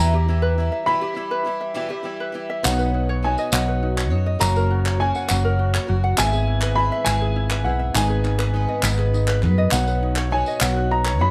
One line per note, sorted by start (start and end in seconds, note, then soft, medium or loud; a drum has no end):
0.00 0.13 E2 medium
0.00 0.69 E2 medium
0.00 0.14 B2 medium
0.00 0.14 E3 medium
0.00 0.13 G3 medium
0.00 0.27 E4 medium
0.00 0.13 E4 medium
0.00 0.12 G4 medium
0.00 0.13 B4 medium
0.00 0.42 E5 medium
0.00 0.88 A#5 medium
0.13 0.27 E3 soft
0.13 0.27 G3 soft
0.13 0.28 E4 soft
0.13 0.28 G4 medium
0.13 0.72 G4 medium
0.28 0.56 E3 medium
0.28 0.57 G3 soft
0.28 0.57 E4 medium
0.28 0.58 E4 medium
0.28 0.59 G4 medium
0.42 1.01 B4 medium
0.58 0.86 E3 soft
0.58 0.86 G3 medium
0.58 0.86 E4 medium
0.58 0.87 E4 medium
0.58 0.87 G4 medium
0.72 1.31 E5 medium
0.86 1.02 E2 medium
0.86 1.02 B2 medium
0.86 1.02 E3 medium
0.86 1.01 G3 medium
0.86 1.15 E4 medium
0.86 1.01 E4 medium
0.86 1.00 G4 medium
0.86 2.01 B5 medium
1.01 1.13 E3 soft
1.01 1.15 G3 soft
1.01 1.16 E4 soft
1.01 1.16 G4 medium
1.01 1.61 G4 medium
1.15 1.43 E3 medium
1.15 1.44 G3 medium
1.15 1.45 E4 medium
1.15 1.46 G4 medium
1.31 1.90 B4 medium
1.44 1.73 E3 medium
1.44 1.74 G3 medium
1.44 1.75 E4 medium
1.44 1.74 E4 medium
1.44 1.74 G4 medium
1.61 2.20 E5 medium
1.74 1.90 E2 medium
1.74 1.90 B2 medium
1.74 1.90 E3 medium
1.74 1.89 G3 medium
1.74 1.88 E4 medium
1.74 2.04 E4 medium
1.74 1.87 G4 medium
1.89 2.02 E3 soft
1.89 2.03 G3 soft
1.89 2.04 E4 medium
1.89 2.04 G4 medium
1.89 2.49 G4 medium
2.03 2.31 E3 medium
2.03 2.32 G3 medium
2.03 2.33 E4 medium
2.03 2.34 E4 medium
2.03 2.34 G4 medium
2.20 2.64 B4 medium
2.32 2.63 E3 medium
2.32 2.63 G3 soft
2.32 2.64 E4 medium
2.32 2.64 G4 medium
2.50 2.64 E5 medium
2.63 4.38 B1 medium
2.63 3.35 B1 medium
2.63 4.38 B2 medium
2.63 3.21 B3 medium
2.63 4.37 B3 medium
2.63 3.22 D#4 medium
2.63 2.93 D#4 medium
2.63 4.38 D#4 medium
2.63 3.23 F#4 medium
2.63 4.39 F#4 medium
2.63 3.25 C#5 medium
2.63 4.39 C#5 medium
2.63 3.20 F#5 medium
2.63 clap medium
2.63 tambourine medium
2.79 3.38 B4 medium
2.79 tambourine soft
2.94 3.23 D#4 medium
3.09 3.68 C#5 medium
3.23 3.52 B3 medium
3.23 3.52 D#4 medium
3.23 3.52 F#4 medium
3.23 3.51 C#5 medium
3.23 3.54 G#5 medium
3.38 3.97 D#5 medium
3.38 tambourine soft
3.52 4.12 B1 medium
3.52 4.12 B3 medium
3.52 4.12 D#4 medium
3.52 3.82 D#4 medium
3.52 4.10 F#4 medium
3.52 4.09 C#5 medium
3.52 4.44 F#5 medium
3.52 clap medium
3.52 tambourine medium
3.68 4.27 B4 medium
3.83 4.10 D#4 medium
3.97 4.41 C#5 medium
3.97 clap medium
4.10 4.35 F#2 medium
4.10 4.40 D#4 medium
4.10 4.40 D#4 soft
4.10 4.39 F#4 soft
4.10 4.40 C#5 soft
4.26 4.41 D#5 medium
4.39 6.14 F#1 medium
4.39 5.12 F#1 medium
4.39 6.14 F#2 medium
4.39 4.99 F#3 medium
4.39 6.14 A#3 medium
4.39 4.98 A#3 medium
4.39 4.99 C#4 medium
4.39 6.14 C#4 medium
4.39 5.00 F#4 medium
4.39 4.69 F#4 medium
4.39 6.15 F#4 medium
4.39 5.00 A#4 medium
4.39 6.16 C#5 medium
4.39 4.96 A#5 medium
4.39 clap medium
4.39 tambourine medium
4.56 5.15 A#4 medium
4.56 tambourine soft
4.71 5.00 F#4 medium
4.85 5.45 C#5 medium
4.85 clap medium
5.00 5.28 A#3 medium
5.00 5.28 C#4 medium
5.00 5.29 F#4 medium
5.00 5.27 F#4 medium
5.00 5.27 A#4 medium
5.00 5.28 G#5 medium
5.15 5.74 F#5 medium
5.15 tambourine soft
5.28 5.77 F#1 medium
5.28 5.89 F#3 medium
5.28 5.89 A#3 medium
5.28 5.87 C#4 medium
5.28 5.87 F#4 medium
5.28 5.58 F#4 medium
5.28 5.86 A#4 medium
5.28 5.92 F#5 medium
5.28 clap medium
5.28 tambourine medium
5.44 6.04 A#4 medium
5.59 5.87 F#4 medium
5.74 6.19 C#5 medium
5.74 clap medium
5.87 6.13 F#1 medium
5.87 6.17 C#4 soft
5.87 6.18 F#4 soft
5.87 6.18 F#4 medium
5.87 6.17 A#4 soft
6.04 6.18 F#5 medium
6.17 7.91 G#1 medium
6.17 6.89 G#1 medium
6.17 7.91 G#2 medium
6.17 6.76 G#3 medium
6.17 7.91 B3 medium
6.17 7.91 E4 soft
6.17 6.77 E4 medium
6.17 6.46 E4 medium
6.17 7.92 G#4 medium
6.17 6.79 G#4 medium
6.17 6.79 B4 medium
6.17 7.92 E5 medium
6.17 6.79 G#5 loud
6.17 clap medium
6.17 tambourine medium
6.32 6.92 G#4 medium
6.32 tambourine soft
6.47 6.76 E4 medium
6.61 7.22 B4 medium
6.61 clap medium
6.76 7.07 G#3 medium
6.76 7.05 E4 medium
6.76 7.07 E4 medium
6.76 7.07 G#4 medium
6.76 7.06 B4 medium
6.76 7.07 B5 loud
6.92 7.51 E5 medium
7.05 7.66 G#1 loud
7.05 7.35 E4 medium
7.05 7.66 E4 medium
7.05 7.65 G#4 medium
7.05 7.65 B4 medium
7.05 7.67 G#5 loud
7.05 clap medium
7.05 tambourine medium
7.09 7.67 G#3 medium
7.22 7.81 G#4 medium
7.36 7.64 E4 medium
7.50 7.95 B4 medium
7.50 clap medium
7.64 7.89 B1 medium
7.64 7.95 E4 medium
7.64 7.95 E4 soft
7.64 7.96 G#4 soft
7.64 7.95 B4 soft
7.64 7.96 F#5 medium
7.79 7.95 E5 medium
7.94 9.68 G#1 medium
7.94 8.65 G#1 medium
7.94 9.68 G#2 medium
7.94 8.52 G#3 medium
7.94 9.68 B3 medium
7.94 8.55 B3 medium
7.94 8.23 D#4 medium
7.94 9.68 D#4 medium
7.94 8.54 D#4 medium
7.94 9.69 G#4 medium
7.94 8.55 B4 medium
7.94 9.70 D#5 medium
7.94 8.80 G#5 medium
7.94 clap medium
7.94 tambourine medium
8.09 8.69 G#4 medium
8.24 8.52 D#4 medium
8.24 clap soft
8.38 8.98 B4 medium
8.38 clap medium
8.53 8.83 G#3 medium
8.53 8.82 B3 medium
8.53 8.82 D#4 medium
8.53 8.83 D#4 medium
8.53 8.81 B4 medium
8.68 9.28 D#5 medium
8.83 9.44 G#1 medium
8.83 9.43 G#3 medium
8.83 9.43 B3 medium
8.83 9.12 D#4 medium
8.83 9.43 D#4 medium
8.83 9.41 B4 medium
8.83 clap medium
8.83 tambourine medium
8.98 9.57 G#4 medium
8.98 clap soft
9.14 9.42 D#4 medium
9.14 tambourine soft
9.28 9.72 B4 medium
9.28 clap medium
9.42 9.66 F#2 medium
9.42 9.70 B3 soft
9.42 9.72 D#4 medium
9.42 9.71 D#4 soft
9.42 9.72 B4 medium
9.42 clap soft
9.58 9.72 D#5 medium
9.71 10.42 B1 medium
9.71 11.31 B1 medium
9.71 11.31 B2 medium
9.71 11.31 B3 medium
9.71 10.29 B3 medium
9.71 10.30 D#4 medium
9.71 11.31 D#4 medium
9.71 10.02 D#4 medium
9.71 10.32 F#4 medium
9.71 11.31 F#4 medium
9.71 10.32 C#5 medium
9.71 11.31 C#5 medium
9.71 10.33 F#5 medium
9.71 clap medium
9.71 tambourine medium
9.88 10.46 B4 medium
9.88 tambourine soft
10.03 10.31 D#4 medium
10.16 10.76 C#5 medium
10.16 clap medium
10.31 10.60 B3 medium
10.31 10.60 D#4 medium
10.31 10.61 D#4 medium
10.31 10.60 F#4 medium
10.31 10.59 C#5 medium
10.31 10.59 G#5 medium
10.46 11.06 D#5 medium
10.46 tambourine soft
10.60 11.20 B1 medium
10.60 11.20 B3 medium
10.60 11.20 D#4 medium
10.60 10.90 D#4 medium
10.60 11.19 F#4 medium
10.60 11.18 C#5 medium
10.60 10.88 F#5 medium
10.60 clap medium
10.60 tambourine medium
10.77 11.31 B4 medium
10.91 11.19 D#4 medium
10.91 11.21 A#5 medium
11.05 11.31 C#5 medium
11.05 clap medium
11.19 11.31 F#2 medium
11.19 11.31 D#4 medium
11.19 11.31 D#4 soft
11.19 11.31 F#4 soft
11.19 11.31 C#5 soft
11.19 11.31 B5 medium